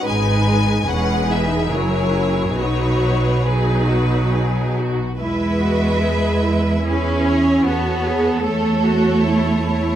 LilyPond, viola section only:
\new Staff \with { instrumentName = "Viola section" } { \time 3/4 \key b \major \tempo 4 = 72 << { gis4 gis4 fis4 | fis4 fis4.~ fis16 r16 | \key e \major e'8 fis'8 gis'8 e'4. | fis'8 gis'8 a'8 fis'8 e'8 e'8 | } \\ { dis'4 cis'8 dis'8 e'4 | dis'4 dis'4.~ dis'16 r16 | r2. | r2. | } >> }